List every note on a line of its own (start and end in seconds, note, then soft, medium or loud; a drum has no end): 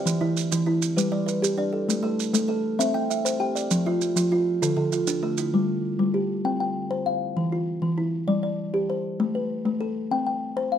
0.00 0.36 D5 medium
0.00 0.21 G5 medium
0.06 0.36 E3 medium
0.06 maracas medium
0.21 0.52 E3 medium
0.21 0.50 E4 medium
0.21 0.66 E4 medium
0.37 maracas medium
0.52 0.82 E3 medium
0.52 0.65 E4 medium
0.52 maracas medium
0.66 0.97 E4 medium
0.66 1.13 E4 medium
0.82 maracas medium
0.97 1.28 G3 medium
0.97 1.27 G4 medium
0.97 1.43 B4 medium
0.97 maracas medium
1.12 1.43 G3 medium
1.12 1.58 D5 medium
1.26 1.73 B4 medium
1.26 maracas medium
1.42 1.73 G4 medium
1.42 maracas medium
1.58 1.88 D4 medium
1.58 2.04 D5 medium
1.73 2.02 A4 medium
1.89 2.19 A3 medium
1.89 maracas medium
2.03 2.34 A3 medium
2.03 2.33 A4 medium
2.03 2.47 A4 medium
2.20 maracas medium
2.33 2.64 A3 medium
2.33 2.47 A4 medium
2.33 maracas medium
2.48 2.79 A4 medium
2.48 2.95 A4 medium
2.79 3.10 C4 medium
2.79 3.10 C5 medium
2.79 3.25 E5 medium
2.79 maracas medium
2.94 3.25 C4 medium
2.94 3.40 G5 medium
3.10 3.56 E5 medium
3.10 maracas medium
3.25 3.56 C5 medium
3.25 maracas medium
3.40 3.71 G4 medium
3.40 3.86 G5 medium
3.55 4.01 D5 medium
3.55 maracas medium
3.71 4.01 F3 medium
3.71 maracas medium
3.86 4.17 F3 medium
3.86 4.31 F4 medium
3.86 4.15 F4 medium
4.01 maracas medium
4.16 4.47 F3 medium
4.16 4.31 F4 medium
4.16 maracas medium
4.32 4.62 F4 medium
4.32 4.61 F4 medium
4.62 4.93 D3 medium
4.62 5.08 F4 medium
4.62 4.76 A4 medium
4.62 maracas medium
4.77 5.08 D3 medium
4.77 5.23 A4 medium
4.92 5.38 F4 medium
4.92 maracas medium
5.07 5.38 D4 medium
5.07 maracas medium
5.23 5.53 A3 medium
5.23 5.69 A4 medium
5.37 5.84 E4 medium
5.37 maracas medium
5.54 5.84 G3 medium
5.99 6.30 G3 medium
6.14 6.60 G4 medium
6.45 6.76 C4 medium
6.45 6.59 G5 medium
6.60 7.06 G5 medium
6.91 7.21 C5 medium
7.06 7.52 F5 medium
7.37 7.67 E3 medium
7.52 7.98 F4 medium
7.82 8.13 E3 medium
7.98 8.43 E4 medium
8.28 8.58 G3 medium
8.28 8.42 D5 medium
8.43 8.89 D5 medium
8.74 9.04 G4 medium
8.90 9.35 C5 medium
9.20 9.50 A3 medium
9.35 9.81 B4 medium
9.65 9.96 A3 medium
9.81 10.26 A4 medium
10.11 10.42 C4 medium
10.11 10.25 G5 medium
10.26 10.72 G5 medium
10.57 10.79 C5 medium
10.72 10.79 F5 medium